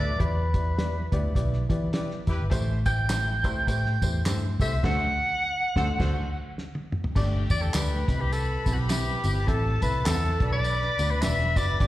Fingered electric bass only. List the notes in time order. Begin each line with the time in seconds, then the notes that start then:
Already playing: D2
0.20 E2
1.12 D2
1.35 B1
1.70 E3
2.27 E2
2.40 G1
2.51 A1
3.44 C2
3.67 A2
4.02 E2
4.26 G2
4.60 C2
4.84 D2
5.76 D2
6.00 D2
7.16 G1
7.50 E2
7.74 D2
8.08 C2
8.66 B1
9.24 G1
9.48 A1
9.82 C2
10.07 E2
10.40 B1
10.99 D2
11.22 E1
11.56 F#1
11.80 G1